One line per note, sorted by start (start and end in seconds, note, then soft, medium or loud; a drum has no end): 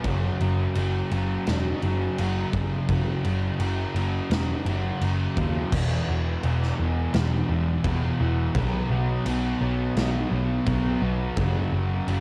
0.04 0.29 F#1 medium
0.04 0.76 F#2 loud
0.04 0.41 C#3 loud
0.04 0.39 F#3 loud
0.04 kick loud
0.04 crash medium
0.40 0.66 F#1 medium
0.40 0.76 C#3 soft
0.40 0.79 F#3 medium
0.40 crash soft
0.75 1.01 F#1 medium
0.75 1.47 F#2 medium
0.75 1.13 C#3 medium
0.75 1.11 F#3 medium
0.75 crash medium
1.11 1.36 F#1 medium
1.11 1.47 C#3 medium
1.11 1.48 F#3 medium
1.11 crash medium
1.47 1.72 E1 medium
1.47 2.17 F#2 loud
1.47 1.85 C#3 loud
1.47 1.82 F#3 loud
1.47 snare loud
1.47 crash medium
1.82 2.08 F#1 medium
1.82 2.19 C#3 medium
1.82 2.20 F#3 medium
1.82 crash soft
2.18 2.43 F#1 medium
2.18 2.88 F#2 medium
2.18 2.55 C#3 medium
2.18 2.53 F#3 medium
2.18 crash medium
2.53 2.78 F#1 medium
2.53 2.90 C#3 medium
2.53 2.91 F#3 medium
2.53 kick medium
2.53 crash medium
2.89 3.14 F#1 medium
2.89 3.59 F#2 medium
2.89 3.26 C#3 loud
2.89 3.24 F#3 loud
2.89 kick loud
2.89 crash medium
3.24 3.50 F#1 medium
3.24 3.60 C#3 medium
3.24 3.62 F#3 medium
3.24 crash medium
3.59 3.84 F#1 medium
3.59 4.29 F#2 medium
3.59 3.97 C#3 medium
3.59 3.94 F#3 medium
3.59 crash medium
3.94 4.20 F#1 medium
3.94 4.31 C#3 medium
3.94 4.32 F#3 medium
3.94 crash medium
4.30 4.55 E1 medium
4.30 5.01 F#2 medium
4.30 4.68 C#3 loud
4.30 4.65 F#3 medium
4.30 snare loud
4.30 crash medium
4.65 4.90 F#1 medium
4.65 5.02 C#3 medium
4.65 5.03 F#3 medium
4.65 crash medium
5.01 5.26 F#1 medium
5.01 5.71 F#2 medium
5.01 5.39 C#3 medium
5.01 5.36 F#3 medium
5.01 crash medium
5.37 5.62 D#2 medium
5.37 5.72 C#3 medium
5.37 5.71 F#3 medium
5.37 kick medium
5.37 crash medium
5.72 6.00 E1 medium
5.72 6.41 E2 loud
5.72 6.10 B2 loud
5.72 6.07 E3 loud
5.72 kick loud
5.72 crash loud
5.72 crash medium
6.09 6.36 E1 medium
6.09 6.43 B2 medium
6.09 6.44 E3 medium
6.43 6.71 E1 loud
6.43 7.12 E2 medium
6.43 6.80 B2 medium
6.43 6.78 E3 medium
6.43 crash medium
6.63 snare soft
6.79 7.07 E1 medium
6.79 7.14 B2 medium
6.79 7.15 E3 medium
7.14 7.42 E1 medium
7.14 7.83 E2 loud
7.14 7.51 B2 loud
7.14 7.48 E3 loud
7.14 snare loud
7.14 crash medium
7.49 7.77 E1 medium
7.49 7.85 B2 medium
7.49 7.86 E3 medium
7.84 8.12 E1 loud
7.84 8.53 E2 medium
7.84 8.21 B2 medium
7.84 8.18 E3 medium
7.84 kick medium
7.84 crash medium
8.20 8.48 E1 medium
8.20 8.53 B2 medium
8.20 8.53 E3 medium
8.55 8.82 B1 medium
8.55 9.24 B2 loud
8.55 8.92 F#3 loud
8.55 8.89 B3 loud
8.55 kick loud
8.55 crash medium
8.90 9.18 B1 medium
8.90 9.27 F#3 medium
8.90 9.27 B3 medium
9.25 9.53 B1 medium
9.25 9.95 B2 medium
9.25 9.64 F#3 medium
9.25 9.60 B3 medium
9.25 crash medium
9.61 9.88 B1 medium
9.61 9.98 F#3 medium
9.61 9.98 B3 medium
9.96 10.24 B1 medium
9.96 10.65 B2 loud
9.96 10.34 F#3 loud
9.96 10.31 B3 loud
9.96 snare loud
9.96 crash medium
10.31 10.59 B1 medium
10.31 10.67 F#3 medium
10.31 10.68 B3 medium
10.66 10.94 B1 loud
10.66 11.35 B2 medium
10.66 11.04 F#3 medium
10.66 11.01 B3 medium
10.66 kick loud
10.66 crash medium
11.02 11.29 B1 loud
11.02 11.39 F#3 medium
11.02 11.36 B3 medium
11.37 11.65 F#1 medium
11.37 12.07 F#2 loud
11.37 11.74 C#3 loud
11.37 11.72 F#3 loud
11.37 kick loud
11.37 crash medium
11.72 12.00 F#1 medium
11.72 12.08 C#3 medium
11.72 12.10 F#3 medium
12.08 12.20 F#1 medium
12.08 12.20 F#2 medium
12.08 12.20 C#3 medium
12.08 12.20 F#3 medium
12.08 crash medium